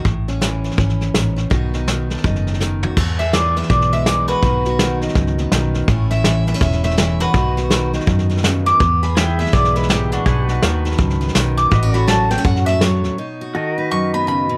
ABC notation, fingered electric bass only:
X:1
M:4/4
L:1/8
Q:"Swing" 1/4=164
K:E
V:1 name="Fingered electric bass" clef=bass
A,,,4 G,,,2 A,,,2 | B,,,4 F,,,4 | E,,4 B,,,4 | B,,,4 C,,2 B,,,2 |
A,,,4 E,,,4 | B,,,4 F,,4 | E,,4 B,,,4 | B,,,2 D,,2 C,,2 B,,,2 |
A,,,4 F,,4 | z8 |]